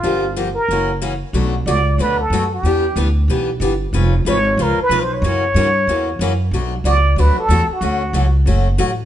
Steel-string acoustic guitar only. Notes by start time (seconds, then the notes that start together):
0.03 D3 F3 A#3 D4 G4
0.36 D3 F3 A#3 D4 G4
0.71 C#3 E3 A#3 C#4 F#4
1.02 C#3 E3 A#3 C#4 F#4
1.34 B2 F#3 A3 D4 F#4
1.67 B2 F#3 A3 D4 F#4
1.99 B2 F#3 A3 D4 F#4
2.33 B2 F#3 A3 D4 F#4
2.65 E3 B3 D4 G4
2.96 E3 B3 D4 G4
3.30 E3 B3 D4 G4
3.61 E3 B3 D4 G4
3.94 F3 G#3 C#4 F4 B4
4.26 F3 G#3 C#4 F4 B4
4.59 F3 G#3 C#4 F4 B4
4.91 F3 G#3 C#4 F4 B4
5.24 C#3 E3 A#3 C#4 F#4
5.56 C#3 E3 A#3 C#4 F#4
5.89 C#3 E3 A#3 C#4 F#4
6.21 C#3 E3 A#3 C#4 F#4
6.53 B2 F#3 A3 D4 F#4
6.85 B2 F#3 A3 D4 F#4
7.18 B2 F#3 A3 D4 F#4
7.50 B2 F#3 A3 D4 F#4
7.82 D3 F#3 A3 C#4 F#4
8.14 D3 F#3 A3 C#4 F#4
8.47 D3 F#3 A3 C#4 F#4
8.78 D3 F#3 A3 C#4 F#4